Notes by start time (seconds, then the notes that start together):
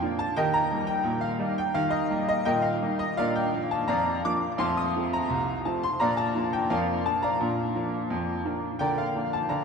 Already playing: G5
0.02 F3 A#3 D4
0.19 A5
0.36 D#3 G4 A#4 D#5 G5
0.54 A#5
0.71 G3 A#3 D#4
0.87 G5
1.04 A#2
1.21 F5
1.39 G3 A#3 D#4
1.58 G5
1.74 D#3 G4 F5
1.90 D#5
2.10 G3 A#3 D#4
2.29 D#5
2.45 A#2 A#4 D#5 G5
2.62 F5
2.82 G3 A#3 D#4
2.99 D#5
3.17 A#2 D4 A#4 D5 F5
3.36 G5
3.54 F3 A#3 D4
3.71 A5
3.88 F2 D5 F5 A#5
4.25 F3 A#3 D4 D6
4.58 F2 A3 F5 A5 C6
4.77 D#6
4.96 F3 A3 C4
5.13 A#5
5.30 C2
5.65 F3 A3 C4 A5
5.83 C6
6.00 A#2 D4 D5 F5 A#5
6.17 A5
6.35 F3 A#3 D4
6.53 G5
6.70 F2 A#4 D5 F5
7.06 F3 A#3 D4 A5
7.22 D5 F5 A#5
7.40 A#2 D4
7.75 F3 A#3 D4
8.10 F2
8.45 F3 A#3 D4
8.79 D3 A#4 D5 G5
8.98 F5
9.15 F3 A#3 D4
9.33 A5
9.49 D3 D5 F5 A#5